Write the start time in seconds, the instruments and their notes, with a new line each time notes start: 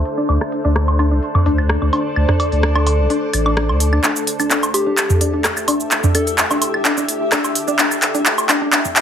Already playing: ambient pad D4 A4 E5, synth drone C5
0.05 open hi-hat
0.18 synth arpeggio sound D4
0.29 sub bass D2, synth arpeggio sound D4, ambient pad D5, high woodblock
0.41 cross-stick, high woodblock
0.52 open hi-hat
0.65 sub bass D2, synth arpeggio sound D4, open hi-hat
0.76 cross-stick, high woodblock
0.88 low woodblock
0.99 synth arpeggio sound D4, open hi-hat, high woodblock, low woodblock
1.11 sub bass C2, synth arpeggio sound D4
1.23 open hi-hat
1.35 mid tom, high woodblock
1.46 sub bass D2, synth arpeggio sound D4, open hi-hat
1.58 high woodblock
1.69 cross-stick
1.82 sub bass D2, synth arpeggio sound D4, high woodblock
1.93 synth arpeggio sound D4, open hi-hat, low woodblock
2.16 sub bass D2, high woodblock
2.29 synth arpeggio sound D4, cross-stick, mid tom
2.40 open hi-hat, high woodblock
2.52 sub bass D2, open hi-hat
2.63 synth arpeggio sound D4, cross-stick
2.75 synth arpeggio sound D4, high woodblock, low woodblock
2.87 open hi-hat, high woodblock, low woodblock
2.99 sub bass C2
3.10 synth arpeggio sound D4, open hi-hat
3.33 sub bass A1, open hi-hat, high woodblock
3.46 synth arpeggio sound D4, high woodblock
3.57 synth arpeggio sound D4, cross-stick
3.69 sub bass D2, low woodblock
3.80 open hi-hat
3.93 synth arpeggio sound D4, high woodblock
4.04 sub bass D2, synth arpeggio sound D4, synth drone G4, clap, shaker
4.16 shaker
4.27 open hi-hat
4.32 ambient pad E5
4.40 sub bass D2, synth arpeggio sound D4, open hi-hat, high woodblock, shaker
4.51 synth arpeggio sound D4, clap, shaker
4.63 low woodblock, shaker
4.74 soft synth lead G4, open hi-hat, low woodblock
4.87 sub bass C2, synth arpeggio sound D4
4.98 clap, open hi-hat, high woodblock, shaker
5.10 mid tom, shaker
5.21 sub bass D2, synth arpeggio sound D4, open hi-hat
5.34 synth arpeggio sound D4
5.44 cross-stick, clap, shaker
5.57 sub bass D2, high woodblock, shaker
5.68 synth arpeggio sound D4, open hi-hat, low woodblock
5.80 shaker
5.91 sub bass D2, clap, shaker
6.04 synth arpeggio sound D4, mid tom, shaker
6.15 synth arpeggio sound D4, soft synth lead A4, open hi-hat, high woodblock
6.27 sub bass D2, soft synth lead A4, open hi-hat, shaker
6.38 clap, shaker
6.51 synth arpeggio sound D4, low woodblock, shaker
6.62 open hi-hat, low woodblock
6.74 sub bass C2, high woodblock
6.85 synth arpeggio sound D4, clap, open hi-hat, shaker
6.97 synth arpeggio sound D4, shaker
7.09 sub bass D2, open hi-hat
7.32 synth arpeggio sound D4, cross-stick, clap, high woodblock, shaker
7.44 sub bass D2, low woodblock, shaker
7.55 open hi-hat
7.68 synth arpeggio sound D4, shaker
7.79 sub bass D2, synth arpeggio sound D4, clap, shaker
7.91 high woodblock, shaker
8.02 clap, open hi-hat
8.15 sub bass D2, synth arpeggio sound D4, open hi-hat, shaker
8.26 clap, shaker
8.38 low woodblock, shaker
8.49 synth arpeggio sound D4, clap, open hi-hat, high woodblock, low woodblock
8.62 sub bass C2, synth arpeggio sound D4
8.73 synth arpeggio sound D4, clap, open hi-hat, shaker
8.85 mid tom, shaker
8.96 sub bass D2, clap, open hi-hat